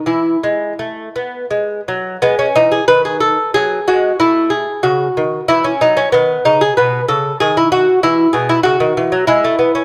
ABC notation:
X:1
M:3/4
L:1/16
Q:1/4=93
K:E
V:1 name="Lute"
E12 | B, C D G B G A2 G2 F2 | E2 G2 F4 E C D C | B,2 D G B2 A2 G E F2 |
E2 G E F4 E4 |]
V:2 name="Lute" clef=bass
E,2 G,2 A,2 B,2 G,2 F,2 | G,2 E,2 D,4 F,2 G,2 | A,4 C,2 D,2 E,2 F,2 | D,2 C,2 B,,2 C,2 D,4 |
E,2 B,,2 C, D, E, F, G, A, B, C |]